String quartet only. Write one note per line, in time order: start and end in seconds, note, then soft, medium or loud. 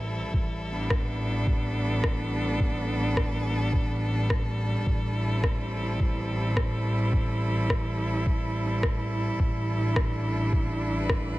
0.00 11.39 G3 medium
0.00 0.34 C4 medium
0.00 1.94 E4 medium
0.00 11.21 A4 medium
0.70 4.87 B3 medium
0.70 5.71 D4 medium
5.11 11.39 E4 medium
5.28 9.40 C4 medium
9.83 11.39 D4 medium
10.98 11.39 B4 medium